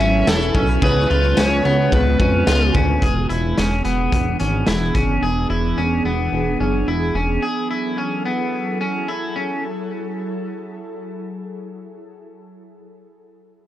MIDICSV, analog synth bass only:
0, 0, Header, 1, 2, 480
1, 0, Start_track
1, 0, Key_signature, 3, "minor"
1, 0, Tempo, 550459
1, 714, Time_signature, 4, 2, 24, 8
1, 11920, End_track
2, 0, Start_track
2, 0, Title_t, "Analog synth bass"
2, 0, Program_c, 0, 38
2, 0, Note_on_c, 0, 32, 89
2, 208, Note_off_c, 0, 32, 0
2, 244, Note_on_c, 0, 28, 99
2, 451, Note_off_c, 0, 28, 0
2, 478, Note_on_c, 0, 35, 96
2, 687, Note_off_c, 0, 35, 0
2, 720, Note_on_c, 0, 37, 112
2, 928, Note_off_c, 0, 37, 0
2, 965, Note_on_c, 0, 37, 114
2, 1172, Note_off_c, 0, 37, 0
2, 1205, Note_on_c, 0, 37, 99
2, 1411, Note_off_c, 0, 37, 0
2, 1441, Note_on_c, 0, 37, 115
2, 1649, Note_off_c, 0, 37, 0
2, 1677, Note_on_c, 0, 37, 97
2, 1887, Note_off_c, 0, 37, 0
2, 1915, Note_on_c, 0, 41, 87
2, 2126, Note_off_c, 0, 41, 0
2, 2156, Note_on_c, 0, 37, 91
2, 2367, Note_off_c, 0, 37, 0
2, 2400, Note_on_c, 0, 38, 96
2, 2608, Note_off_c, 0, 38, 0
2, 2639, Note_on_c, 0, 28, 101
2, 2848, Note_off_c, 0, 28, 0
2, 2882, Note_on_c, 0, 28, 97
2, 3090, Note_off_c, 0, 28, 0
2, 3124, Note_on_c, 0, 28, 88
2, 3331, Note_off_c, 0, 28, 0
2, 3359, Note_on_c, 0, 28, 87
2, 3568, Note_off_c, 0, 28, 0
2, 3597, Note_on_c, 0, 28, 102
2, 3807, Note_off_c, 0, 28, 0
2, 3841, Note_on_c, 0, 32, 82
2, 4049, Note_off_c, 0, 32, 0
2, 4083, Note_on_c, 0, 28, 92
2, 4290, Note_off_c, 0, 28, 0
2, 4317, Note_on_c, 0, 30, 86
2, 4527, Note_off_c, 0, 30, 0
2, 4556, Note_on_c, 0, 28, 97
2, 4766, Note_off_c, 0, 28, 0
2, 4796, Note_on_c, 0, 28, 91
2, 5007, Note_off_c, 0, 28, 0
2, 5036, Note_on_c, 0, 28, 94
2, 5246, Note_off_c, 0, 28, 0
2, 5275, Note_on_c, 0, 28, 96
2, 5486, Note_off_c, 0, 28, 0
2, 5515, Note_on_c, 0, 28, 94
2, 5726, Note_off_c, 0, 28, 0
2, 5759, Note_on_c, 0, 30, 90
2, 5968, Note_off_c, 0, 30, 0
2, 5996, Note_on_c, 0, 28, 81
2, 6207, Note_off_c, 0, 28, 0
2, 6232, Note_on_c, 0, 28, 92
2, 6444, Note_off_c, 0, 28, 0
2, 11920, End_track
0, 0, End_of_file